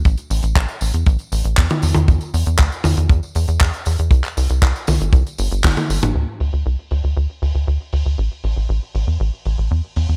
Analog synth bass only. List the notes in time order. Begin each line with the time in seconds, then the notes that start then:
0.05 A1
0.30 A1
0.43 A1
0.56 A1
0.81 A1
0.94 E2
1.06 A1
1.32 A1
1.45 A1
1.58 E2
1.83 E2
1.96 E2
2.08 E2
2.34 E2
2.47 E2
2.59 D2
2.85 E2
2.97 E2
3.10 E2
3.36 E2
3.48 E2
3.61 E2
3.86 E2
3.99 E2
4.11 C2
4.37 C2
4.50 C2
4.62 C2
4.88 C2
5.01 G1
5.13 C2
5.39 G1
5.52 G1
5.64 G1
5.90 G1
6.02 G1
6.15 D2
6.40 D2
6.53 D2
6.66 C2
6.91 D2
7.04 D2
7.17 D2
7.42 D2
7.55 D2
7.67 D2
7.93 D2
8.06 D2
8.18 A1
8.44 A1
8.57 A1
8.69 A1
8.95 A1
9.07 E2
9.20 A1
9.46 A1
9.58 A1
9.71 E2
9.96 E2
10.09 E2